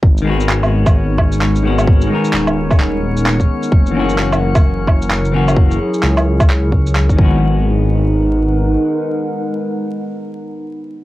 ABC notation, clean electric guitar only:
X:1
M:4/4
L:1/8
Q:"Swing 16ths" 1/4=130
K:G#m
V:1 name="Clean electric guitar"
z [D,G,B,F]6 [D,G,B,F]- | [D,G,B,F] [D,G,B,A]6- [D,G,B,A] | z [E,A,CF]6 [E,A,CF]- | [E,A,CF] z6 [D,G,B,F]- |
[D,G,B,F]8- | [D,G,B,F]8 |]